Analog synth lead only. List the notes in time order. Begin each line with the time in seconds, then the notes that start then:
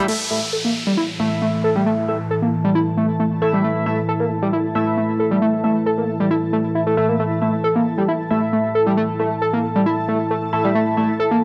0.08 A3
0.31 A3
0.53 A4
0.64 A#3
0.87 G3
0.97 E4
1.20 A3
1.42 A3
1.64 A4
1.75 G3
1.86 A3
2.08 A3
2.31 A4
2.42 A#3
2.64 G3
2.75 E4
2.97 A3
3.20 A3
3.42 A4
3.53 G3
3.64 A3
3.86 A3
4.08 A4
4.20 A#3
4.42 G3
4.53 E4
4.75 A3
4.97 A3
5.19 A4
5.31 G3
5.42 A3
5.64 A3
5.86 A4
5.98 A#3
6.20 G3
6.31 E4
6.53 A3
6.75 E4
6.87 A3
6.97 A3
7.09 A#3
7.19 A3
7.42 A3
7.64 A4
7.75 A#3
7.98 G3
8.08 E4
8.31 A3
8.53 A3
8.75 A4
8.86 G3
8.97 A3
9.19 A3
9.42 A4
9.53 A#3
9.75 G3
9.86 E4
10.08 A3
10.31 A3
10.53 A4
10.64 G3
10.75 A3
10.97 A3
11.20 A4
11.31 A#3